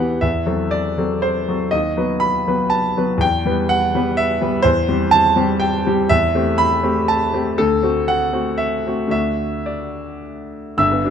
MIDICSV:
0, 0, Header, 1, 2, 480
1, 0, Start_track
1, 0, Tempo, 498753
1, 213, Time_signature, 3, 2, 24, 8
1, 3091, Tempo, 478469
1, 5971, Tempo, 497100
1, 7891, Tempo, 541516
1, 10577, End_track
2, 0, Start_track
2, 0, Title_t, "Grand piano"
2, 0, Program_c, 0, 0
2, 0, Control_c, 0, 64, 127
2, 0, Note_on_c, 0, 40, 51
2, 0, Note_on_c, 0, 52, 41
2, 0, Note_on_c, 0, 59, 41
2, 0, Note_on_c, 0, 67, 44
2, 0, Note_on_c, 0, 71, 77
2, 0, Note_on_c, 0, 78, 75
2, 0, Note_on_c, 0, 79, 82
2, 194, Note_off_c, 0, 52, 0
2, 195, Note_off_c, 0, 59, 0
2, 199, Note_off_c, 0, 67, 0
2, 203, Note_on_c, 0, 76, 76
2, 211, Note_off_c, 0, 40, 0
2, 211, Note_on_c, 0, 40, 54
2, 212, Note_off_c, 0, 78, 0
2, 229, Control_c, 0, 64, 0
2, 231, Note_off_c, 0, 71, 0
2, 234, Note_off_c, 0, 79, 0
2, 389, Control_c, 0, 64, 127
2, 444, Note_on_c, 0, 54, 37
2, 445, Note_off_c, 0, 40, 0
2, 450, Note_on_c, 0, 69, 44
2, 451, Note_on_c, 0, 60, 37
2, 683, Note_on_c, 0, 74, 83
2, 689, Note_off_c, 0, 76, 0
2, 892, Note_off_c, 0, 54, 0
2, 896, Note_off_c, 0, 60, 0
2, 896, Note_off_c, 0, 69, 0
2, 941, Note_on_c, 0, 54, 44
2, 946, Note_on_c, 0, 60, 40
2, 949, Note_on_c, 0, 69, 46
2, 1175, Note_on_c, 0, 72, 77
2, 1178, Note_off_c, 0, 74, 0
2, 1394, Note_off_c, 0, 54, 0
2, 1397, Note_off_c, 0, 60, 0
2, 1398, Note_off_c, 0, 69, 0
2, 1427, Note_on_c, 0, 54, 41
2, 1434, Note_on_c, 0, 60, 36
2, 1436, Note_on_c, 0, 69, 42
2, 1643, Note_off_c, 0, 54, 0
2, 1645, Note_on_c, 0, 75, 84
2, 1647, Note_off_c, 0, 60, 0
2, 1648, Note_off_c, 0, 69, 0
2, 1659, Note_on_c, 0, 39, 53
2, 1665, Note_off_c, 0, 72, 0
2, 1685, Control_c, 0, 64, 0
2, 1807, Control_c, 0, 64, 127
2, 1890, Note_off_c, 0, 39, 0
2, 1896, Note_on_c, 0, 54, 43
2, 1902, Note_on_c, 0, 59, 43
2, 1904, Note_on_c, 0, 71, 49
2, 2116, Note_on_c, 0, 83, 94
2, 2122, Note_off_c, 0, 75, 0
2, 2328, Note_off_c, 0, 54, 0
2, 2331, Note_off_c, 0, 59, 0
2, 2332, Note_off_c, 0, 71, 0
2, 2382, Note_on_c, 0, 54, 45
2, 2386, Note_on_c, 0, 71, 52
2, 2387, Note_on_c, 0, 59, 45
2, 2596, Note_on_c, 0, 81, 89
2, 2602, Note_off_c, 0, 83, 0
2, 2821, Note_off_c, 0, 54, 0
2, 2824, Note_off_c, 0, 59, 0
2, 2824, Note_off_c, 0, 71, 0
2, 2860, Note_on_c, 0, 54, 41
2, 2864, Note_on_c, 0, 59, 42
2, 2868, Note_on_c, 0, 71, 49
2, 3057, Note_on_c, 0, 40, 60
2, 3070, Note_off_c, 0, 54, 0
2, 3072, Note_off_c, 0, 59, 0
2, 3074, Note_off_c, 0, 71, 0
2, 3083, Note_off_c, 0, 81, 0
2, 3088, Note_on_c, 0, 79, 102
2, 3107, Control_c, 0, 64, 0
2, 3238, Control_c, 0, 64, 127
2, 3306, Note_off_c, 0, 40, 0
2, 3335, Note_on_c, 0, 55, 47
2, 3344, Note_on_c, 0, 59, 44
2, 3346, Note_on_c, 0, 71, 48
2, 3572, Note_on_c, 0, 78, 101
2, 3573, Note_off_c, 0, 79, 0
2, 3779, Note_off_c, 0, 55, 0
2, 3784, Note_off_c, 0, 59, 0
2, 3785, Note_off_c, 0, 71, 0
2, 3829, Note_on_c, 0, 55, 50
2, 3833, Note_on_c, 0, 59, 49
2, 3843, Note_on_c, 0, 71, 58
2, 4053, Note_on_c, 0, 76, 96
2, 4056, Note_off_c, 0, 78, 0
2, 4258, Note_off_c, 0, 55, 0
2, 4260, Note_off_c, 0, 59, 0
2, 4265, Note_off_c, 0, 71, 0
2, 4297, Note_on_c, 0, 59, 50
2, 4299, Note_on_c, 0, 55, 47
2, 4304, Note_on_c, 0, 71, 51
2, 4506, Note_off_c, 0, 59, 0
2, 4507, Note_off_c, 0, 55, 0
2, 4508, Note_on_c, 0, 72, 101
2, 4510, Note_off_c, 0, 71, 0
2, 4525, Note_on_c, 0, 40, 68
2, 4526, Note_off_c, 0, 76, 0
2, 4541, Control_c, 0, 64, 0
2, 4681, Control_c, 0, 64, 127
2, 4755, Note_off_c, 0, 40, 0
2, 4771, Note_on_c, 0, 55, 46
2, 4772, Note_on_c, 0, 60, 52
2, 4782, Note_on_c, 0, 67, 54
2, 4992, Note_off_c, 0, 72, 0
2, 4998, Note_on_c, 0, 81, 116
2, 5205, Note_off_c, 0, 55, 0
2, 5206, Note_off_c, 0, 60, 0
2, 5211, Note_off_c, 0, 67, 0
2, 5247, Note_on_c, 0, 55, 51
2, 5253, Note_on_c, 0, 60, 53
2, 5258, Note_on_c, 0, 67, 59
2, 5483, Note_on_c, 0, 79, 88
2, 5484, Note_off_c, 0, 81, 0
2, 5692, Note_off_c, 0, 55, 0
2, 5695, Note_off_c, 0, 60, 0
2, 5697, Note_off_c, 0, 67, 0
2, 5751, Note_on_c, 0, 60, 48
2, 5755, Note_on_c, 0, 55, 52
2, 5763, Note_on_c, 0, 67, 50
2, 5958, Note_off_c, 0, 60, 0
2, 5961, Note_off_c, 0, 55, 0
2, 5965, Note_off_c, 0, 67, 0
2, 5969, Note_off_c, 0, 79, 0
2, 5982, Note_on_c, 0, 76, 106
2, 5985, Control_c, 0, 64, 0
2, 5990, Note_on_c, 0, 40, 67
2, 6109, Control_c, 0, 64, 127
2, 6207, Note_off_c, 0, 40, 0
2, 6228, Note_on_c, 0, 57, 47
2, 6233, Note_on_c, 0, 60, 51
2, 6236, Note_on_c, 0, 67, 50
2, 6447, Note_off_c, 0, 76, 0
2, 6450, Note_on_c, 0, 83, 109
2, 6657, Note_off_c, 0, 57, 0
2, 6660, Note_off_c, 0, 60, 0
2, 6661, Note_off_c, 0, 67, 0
2, 6696, Note_on_c, 0, 60, 50
2, 6697, Note_on_c, 0, 57, 52
2, 6698, Note_on_c, 0, 67, 55
2, 6933, Note_off_c, 0, 83, 0
2, 6937, Note_on_c, 0, 81, 94
2, 7138, Note_off_c, 0, 60, 0
2, 7139, Note_off_c, 0, 57, 0
2, 7140, Note_off_c, 0, 67, 0
2, 7177, Note_on_c, 0, 57, 45
2, 7180, Note_on_c, 0, 60, 48
2, 7192, Note_on_c, 0, 67, 53
2, 7391, Note_off_c, 0, 57, 0
2, 7392, Note_off_c, 0, 60, 0
2, 7399, Note_off_c, 0, 67, 0
2, 7416, Note_off_c, 0, 81, 0
2, 7417, Note_on_c, 0, 69, 87
2, 7428, Control_c, 0, 64, 0
2, 7428, Note_on_c, 0, 38, 63
2, 7585, Control_c, 0, 64, 127
2, 7652, Note_off_c, 0, 38, 0
2, 7657, Note_on_c, 0, 57, 42
2, 7659, Note_on_c, 0, 60, 44
2, 7661, Note_on_c, 0, 66, 51
2, 7894, Note_off_c, 0, 69, 0
2, 7899, Note_on_c, 0, 78, 90
2, 8085, Note_off_c, 0, 57, 0
2, 8085, Note_off_c, 0, 60, 0
2, 8087, Note_off_c, 0, 66, 0
2, 8119, Note_on_c, 0, 57, 42
2, 8123, Note_on_c, 0, 60, 45
2, 8127, Note_on_c, 0, 66, 46
2, 8338, Note_on_c, 0, 76, 83
2, 8353, Note_off_c, 0, 78, 0
2, 8552, Note_off_c, 0, 57, 0
2, 8554, Note_off_c, 0, 60, 0
2, 8556, Note_off_c, 0, 66, 0
2, 8595, Note_on_c, 0, 57, 38
2, 8598, Note_on_c, 0, 60, 36
2, 8604, Note_on_c, 0, 66, 41
2, 8776, Note_off_c, 0, 57, 0
2, 8781, Note_on_c, 0, 38, 47
2, 8789, Note_on_c, 0, 57, 37
2, 8799, Note_off_c, 0, 66, 0
2, 8801, Note_off_c, 0, 76, 0
2, 8804, Note_on_c, 0, 62, 34
2, 8811, Note_off_c, 0, 60, 0
2, 8812, Note_on_c, 0, 66, 37
2, 8814, Note_on_c, 0, 76, 78
2, 8848, Control_c, 0, 64, 0
2, 8976, Control_c, 0, 64, 127
2, 9299, Note_on_c, 0, 74, 53
2, 9306, Note_off_c, 0, 76, 0
2, 9784, Note_off_c, 0, 74, 0
2, 10230, Note_off_c, 0, 38, 0
2, 10234, Note_off_c, 0, 57, 0
2, 10241, Note_off_c, 0, 62, 0
2, 10245, Note_off_c, 0, 66, 0
2, 10288, Note_on_c, 0, 31, 58
2, 10291, Note_on_c, 0, 88, 93
2, 10299, Note_on_c, 0, 43, 63
2, 10301, Note_on_c, 0, 76, 72
2, 10307, Control_c, 0, 64, 0
2, 10413, Note_on_c, 0, 59, 40
2, 10465, Control_c, 0, 64, 127
2, 10530, Note_on_c, 0, 62, 45
2, 10534, Note_on_c, 0, 67, 43
2, 10577, Note_off_c, 0, 31, 0
2, 10577, Note_off_c, 0, 43, 0
2, 10577, Note_off_c, 0, 59, 0
2, 10577, Note_off_c, 0, 62, 0
2, 10577, Note_off_c, 0, 67, 0
2, 10577, Note_off_c, 0, 76, 0
2, 10577, Note_off_c, 0, 88, 0
2, 10577, End_track
0, 0, End_of_file